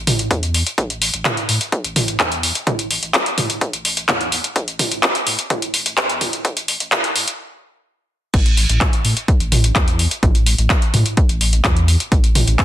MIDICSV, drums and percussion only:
0, 0, Header, 1, 2, 480
1, 0, Start_track
1, 0, Tempo, 472441
1, 791, Time_signature, 4, 2, 24, 8
1, 12850, End_track
2, 0, Start_track
2, 0, Title_t, "Drums"
2, 74, Note_on_c, 9, 45, 88
2, 74, Note_on_c, 9, 46, 110
2, 175, Note_off_c, 9, 45, 0
2, 175, Note_off_c, 9, 46, 0
2, 195, Note_on_c, 9, 42, 53
2, 297, Note_off_c, 9, 42, 0
2, 311, Note_on_c, 9, 36, 121
2, 313, Note_on_c, 9, 42, 47
2, 413, Note_off_c, 9, 36, 0
2, 415, Note_off_c, 9, 42, 0
2, 436, Note_on_c, 9, 42, 51
2, 537, Note_off_c, 9, 42, 0
2, 553, Note_on_c, 9, 46, 103
2, 654, Note_off_c, 9, 46, 0
2, 676, Note_on_c, 9, 42, 51
2, 777, Note_off_c, 9, 42, 0
2, 791, Note_on_c, 9, 36, 113
2, 793, Note_on_c, 9, 42, 50
2, 893, Note_off_c, 9, 36, 0
2, 895, Note_off_c, 9, 42, 0
2, 915, Note_on_c, 9, 42, 51
2, 1017, Note_off_c, 9, 42, 0
2, 1033, Note_on_c, 9, 46, 105
2, 1134, Note_off_c, 9, 46, 0
2, 1154, Note_on_c, 9, 42, 50
2, 1256, Note_off_c, 9, 42, 0
2, 1271, Note_on_c, 9, 36, 117
2, 1272, Note_on_c, 9, 39, 96
2, 1272, Note_on_c, 9, 42, 52
2, 1272, Note_on_c, 9, 45, 93
2, 1373, Note_off_c, 9, 36, 0
2, 1374, Note_off_c, 9, 39, 0
2, 1374, Note_off_c, 9, 42, 0
2, 1374, Note_off_c, 9, 45, 0
2, 1395, Note_on_c, 9, 42, 52
2, 1496, Note_off_c, 9, 42, 0
2, 1512, Note_on_c, 9, 46, 101
2, 1614, Note_off_c, 9, 46, 0
2, 1634, Note_on_c, 9, 42, 53
2, 1736, Note_off_c, 9, 42, 0
2, 1751, Note_on_c, 9, 36, 118
2, 1751, Note_on_c, 9, 42, 55
2, 1853, Note_off_c, 9, 36, 0
2, 1853, Note_off_c, 9, 42, 0
2, 1874, Note_on_c, 9, 42, 53
2, 1976, Note_off_c, 9, 42, 0
2, 1992, Note_on_c, 9, 45, 96
2, 1992, Note_on_c, 9, 46, 104
2, 2094, Note_off_c, 9, 45, 0
2, 2094, Note_off_c, 9, 46, 0
2, 2114, Note_on_c, 9, 42, 56
2, 2216, Note_off_c, 9, 42, 0
2, 2231, Note_on_c, 9, 36, 113
2, 2232, Note_on_c, 9, 39, 88
2, 2232, Note_on_c, 9, 42, 48
2, 2333, Note_off_c, 9, 36, 0
2, 2333, Note_off_c, 9, 39, 0
2, 2333, Note_off_c, 9, 42, 0
2, 2354, Note_on_c, 9, 42, 54
2, 2455, Note_off_c, 9, 42, 0
2, 2472, Note_on_c, 9, 46, 101
2, 2574, Note_off_c, 9, 46, 0
2, 2594, Note_on_c, 9, 42, 53
2, 2696, Note_off_c, 9, 42, 0
2, 2711, Note_on_c, 9, 36, 118
2, 2712, Note_on_c, 9, 42, 54
2, 2712, Note_on_c, 9, 45, 97
2, 2813, Note_off_c, 9, 36, 0
2, 2814, Note_off_c, 9, 42, 0
2, 2814, Note_off_c, 9, 45, 0
2, 2834, Note_on_c, 9, 42, 53
2, 2936, Note_off_c, 9, 42, 0
2, 2952, Note_on_c, 9, 46, 97
2, 3054, Note_off_c, 9, 46, 0
2, 3075, Note_on_c, 9, 42, 52
2, 3177, Note_off_c, 9, 42, 0
2, 3191, Note_on_c, 9, 36, 107
2, 3193, Note_on_c, 9, 39, 102
2, 3193, Note_on_c, 9, 42, 55
2, 3293, Note_off_c, 9, 36, 0
2, 3294, Note_off_c, 9, 39, 0
2, 3294, Note_off_c, 9, 42, 0
2, 3314, Note_on_c, 9, 42, 54
2, 3416, Note_off_c, 9, 42, 0
2, 3431, Note_on_c, 9, 45, 92
2, 3431, Note_on_c, 9, 46, 97
2, 3533, Note_off_c, 9, 45, 0
2, 3533, Note_off_c, 9, 46, 0
2, 3553, Note_on_c, 9, 42, 56
2, 3655, Note_off_c, 9, 42, 0
2, 3671, Note_on_c, 9, 36, 113
2, 3672, Note_on_c, 9, 42, 57
2, 3773, Note_off_c, 9, 36, 0
2, 3774, Note_off_c, 9, 42, 0
2, 3794, Note_on_c, 9, 42, 53
2, 3895, Note_off_c, 9, 42, 0
2, 3911, Note_on_c, 9, 46, 105
2, 4013, Note_off_c, 9, 46, 0
2, 4034, Note_on_c, 9, 42, 59
2, 4135, Note_off_c, 9, 42, 0
2, 4151, Note_on_c, 9, 36, 115
2, 4152, Note_on_c, 9, 39, 92
2, 4152, Note_on_c, 9, 42, 50
2, 4152, Note_on_c, 9, 45, 91
2, 4252, Note_off_c, 9, 36, 0
2, 4253, Note_off_c, 9, 39, 0
2, 4253, Note_off_c, 9, 42, 0
2, 4253, Note_off_c, 9, 45, 0
2, 4274, Note_on_c, 9, 42, 54
2, 4375, Note_off_c, 9, 42, 0
2, 4391, Note_on_c, 9, 46, 96
2, 4492, Note_off_c, 9, 46, 0
2, 4513, Note_on_c, 9, 42, 54
2, 4615, Note_off_c, 9, 42, 0
2, 4631, Note_on_c, 9, 36, 109
2, 4631, Note_on_c, 9, 42, 59
2, 4732, Note_off_c, 9, 36, 0
2, 4732, Note_off_c, 9, 42, 0
2, 4753, Note_on_c, 9, 42, 57
2, 4854, Note_off_c, 9, 42, 0
2, 4870, Note_on_c, 9, 45, 93
2, 4870, Note_on_c, 9, 46, 105
2, 4972, Note_off_c, 9, 45, 0
2, 4972, Note_off_c, 9, 46, 0
2, 4994, Note_on_c, 9, 42, 55
2, 5095, Note_off_c, 9, 42, 0
2, 5110, Note_on_c, 9, 36, 111
2, 5111, Note_on_c, 9, 39, 100
2, 5111, Note_on_c, 9, 42, 55
2, 5212, Note_off_c, 9, 36, 0
2, 5213, Note_off_c, 9, 39, 0
2, 5213, Note_off_c, 9, 42, 0
2, 5233, Note_on_c, 9, 42, 54
2, 5335, Note_off_c, 9, 42, 0
2, 5351, Note_on_c, 9, 46, 103
2, 5452, Note_off_c, 9, 46, 0
2, 5473, Note_on_c, 9, 42, 57
2, 5574, Note_off_c, 9, 42, 0
2, 5590, Note_on_c, 9, 36, 115
2, 5590, Note_on_c, 9, 42, 55
2, 5590, Note_on_c, 9, 45, 99
2, 5692, Note_off_c, 9, 36, 0
2, 5692, Note_off_c, 9, 42, 0
2, 5692, Note_off_c, 9, 45, 0
2, 5713, Note_on_c, 9, 42, 57
2, 5814, Note_off_c, 9, 42, 0
2, 5830, Note_on_c, 9, 46, 99
2, 5932, Note_off_c, 9, 46, 0
2, 5953, Note_on_c, 9, 42, 60
2, 6054, Note_off_c, 9, 42, 0
2, 6070, Note_on_c, 9, 36, 112
2, 6070, Note_on_c, 9, 39, 94
2, 6070, Note_on_c, 9, 42, 56
2, 6172, Note_off_c, 9, 36, 0
2, 6172, Note_off_c, 9, 39, 0
2, 6172, Note_off_c, 9, 42, 0
2, 6193, Note_on_c, 9, 42, 57
2, 6294, Note_off_c, 9, 42, 0
2, 6310, Note_on_c, 9, 45, 95
2, 6310, Note_on_c, 9, 46, 95
2, 6412, Note_off_c, 9, 45, 0
2, 6412, Note_off_c, 9, 46, 0
2, 6432, Note_on_c, 9, 42, 59
2, 6534, Note_off_c, 9, 42, 0
2, 6550, Note_on_c, 9, 36, 115
2, 6550, Note_on_c, 9, 42, 60
2, 6652, Note_off_c, 9, 36, 0
2, 6652, Note_off_c, 9, 42, 0
2, 6672, Note_on_c, 9, 42, 60
2, 6774, Note_off_c, 9, 42, 0
2, 6790, Note_on_c, 9, 46, 104
2, 6891, Note_off_c, 9, 46, 0
2, 6912, Note_on_c, 9, 42, 55
2, 7014, Note_off_c, 9, 42, 0
2, 7030, Note_on_c, 9, 36, 114
2, 7031, Note_on_c, 9, 39, 106
2, 7031, Note_on_c, 9, 42, 57
2, 7031, Note_on_c, 9, 45, 87
2, 7132, Note_off_c, 9, 36, 0
2, 7132, Note_off_c, 9, 39, 0
2, 7132, Note_off_c, 9, 42, 0
2, 7132, Note_off_c, 9, 45, 0
2, 7153, Note_on_c, 9, 42, 59
2, 7255, Note_off_c, 9, 42, 0
2, 7270, Note_on_c, 9, 46, 106
2, 7372, Note_off_c, 9, 46, 0
2, 7392, Note_on_c, 9, 42, 57
2, 7494, Note_off_c, 9, 42, 0
2, 8471, Note_on_c, 9, 36, 123
2, 8471, Note_on_c, 9, 42, 59
2, 8471, Note_on_c, 9, 49, 99
2, 8573, Note_off_c, 9, 36, 0
2, 8573, Note_off_c, 9, 42, 0
2, 8573, Note_off_c, 9, 49, 0
2, 8593, Note_on_c, 9, 42, 62
2, 8694, Note_off_c, 9, 42, 0
2, 8710, Note_on_c, 9, 46, 105
2, 8812, Note_off_c, 9, 46, 0
2, 8834, Note_on_c, 9, 42, 56
2, 8935, Note_off_c, 9, 42, 0
2, 8951, Note_on_c, 9, 36, 122
2, 8951, Note_on_c, 9, 39, 107
2, 8951, Note_on_c, 9, 42, 57
2, 8951, Note_on_c, 9, 45, 83
2, 9052, Note_off_c, 9, 39, 0
2, 9052, Note_off_c, 9, 42, 0
2, 9052, Note_off_c, 9, 45, 0
2, 9053, Note_off_c, 9, 36, 0
2, 9073, Note_on_c, 9, 42, 57
2, 9175, Note_off_c, 9, 42, 0
2, 9191, Note_on_c, 9, 46, 94
2, 9293, Note_off_c, 9, 46, 0
2, 9314, Note_on_c, 9, 42, 57
2, 9415, Note_off_c, 9, 42, 0
2, 9432, Note_on_c, 9, 36, 119
2, 9432, Note_on_c, 9, 42, 61
2, 9533, Note_off_c, 9, 36, 0
2, 9534, Note_off_c, 9, 42, 0
2, 9554, Note_on_c, 9, 42, 55
2, 9656, Note_off_c, 9, 42, 0
2, 9672, Note_on_c, 9, 45, 88
2, 9672, Note_on_c, 9, 46, 108
2, 9774, Note_off_c, 9, 45, 0
2, 9774, Note_off_c, 9, 46, 0
2, 9794, Note_on_c, 9, 42, 61
2, 9896, Note_off_c, 9, 42, 0
2, 9912, Note_on_c, 9, 36, 126
2, 9912, Note_on_c, 9, 39, 98
2, 9912, Note_on_c, 9, 42, 56
2, 10013, Note_off_c, 9, 36, 0
2, 10014, Note_off_c, 9, 39, 0
2, 10014, Note_off_c, 9, 42, 0
2, 10034, Note_on_c, 9, 42, 59
2, 10136, Note_off_c, 9, 42, 0
2, 10152, Note_on_c, 9, 46, 91
2, 10254, Note_off_c, 9, 46, 0
2, 10274, Note_on_c, 9, 42, 61
2, 10376, Note_off_c, 9, 42, 0
2, 10392, Note_on_c, 9, 36, 123
2, 10393, Note_on_c, 9, 42, 58
2, 10393, Note_on_c, 9, 45, 87
2, 10493, Note_off_c, 9, 36, 0
2, 10494, Note_off_c, 9, 42, 0
2, 10494, Note_off_c, 9, 45, 0
2, 10515, Note_on_c, 9, 42, 56
2, 10617, Note_off_c, 9, 42, 0
2, 10632, Note_on_c, 9, 46, 109
2, 10734, Note_off_c, 9, 46, 0
2, 10754, Note_on_c, 9, 42, 54
2, 10856, Note_off_c, 9, 42, 0
2, 10871, Note_on_c, 9, 39, 109
2, 10871, Note_on_c, 9, 42, 56
2, 10872, Note_on_c, 9, 36, 123
2, 10973, Note_off_c, 9, 36, 0
2, 10973, Note_off_c, 9, 39, 0
2, 10973, Note_off_c, 9, 42, 0
2, 10994, Note_on_c, 9, 42, 56
2, 11095, Note_off_c, 9, 42, 0
2, 11112, Note_on_c, 9, 45, 90
2, 11112, Note_on_c, 9, 46, 97
2, 11214, Note_off_c, 9, 45, 0
2, 11214, Note_off_c, 9, 46, 0
2, 11233, Note_on_c, 9, 42, 55
2, 11335, Note_off_c, 9, 42, 0
2, 11351, Note_on_c, 9, 42, 60
2, 11352, Note_on_c, 9, 36, 127
2, 11452, Note_off_c, 9, 42, 0
2, 11453, Note_off_c, 9, 36, 0
2, 11473, Note_on_c, 9, 42, 58
2, 11575, Note_off_c, 9, 42, 0
2, 11591, Note_on_c, 9, 46, 112
2, 11693, Note_off_c, 9, 46, 0
2, 11713, Note_on_c, 9, 42, 59
2, 11815, Note_off_c, 9, 42, 0
2, 11832, Note_on_c, 9, 36, 118
2, 11832, Note_on_c, 9, 39, 103
2, 11832, Note_on_c, 9, 42, 50
2, 11832, Note_on_c, 9, 45, 80
2, 11933, Note_off_c, 9, 36, 0
2, 11933, Note_off_c, 9, 39, 0
2, 11933, Note_off_c, 9, 42, 0
2, 11933, Note_off_c, 9, 45, 0
2, 11954, Note_on_c, 9, 42, 57
2, 12055, Note_off_c, 9, 42, 0
2, 12072, Note_on_c, 9, 46, 101
2, 12174, Note_off_c, 9, 46, 0
2, 12194, Note_on_c, 9, 42, 57
2, 12296, Note_off_c, 9, 42, 0
2, 12311, Note_on_c, 9, 36, 127
2, 12312, Note_on_c, 9, 42, 55
2, 12413, Note_off_c, 9, 36, 0
2, 12413, Note_off_c, 9, 42, 0
2, 12433, Note_on_c, 9, 42, 58
2, 12535, Note_off_c, 9, 42, 0
2, 12551, Note_on_c, 9, 45, 93
2, 12551, Note_on_c, 9, 46, 118
2, 12653, Note_off_c, 9, 45, 0
2, 12653, Note_off_c, 9, 46, 0
2, 12675, Note_on_c, 9, 42, 53
2, 12776, Note_off_c, 9, 42, 0
2, 12791, Note_on_c, 9, 36, 124
2, 12792, Note_on_c, 9, 39, 109
2, 12792, Note_on_c, 9, 42, 52
2, 12850, Note_off_c, 9, 36, 0
2, 12850, Note_off_c, 9, 39, 0
2, 12850, Note_off_c, 9, 42, 0
2, 12850, End_track
0, 0, End_of_file